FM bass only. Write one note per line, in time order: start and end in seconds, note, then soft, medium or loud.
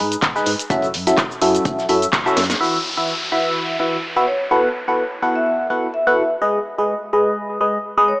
0.00 0.16 G#2 medium
0.23 0.32 G#1 medium
0.46 0.56 G#2 medium
0.70 0.96 F#1 loud
0.94 1.12 F#2 loud
1.18 1.27 F#1 medium
1.42 1.59 F#2 medium
1.65 1.75 F#1 loud
1.89 2.07 F#2 medium
2.13 2.31 F#1 loud
2.37 2.54 F#2 loud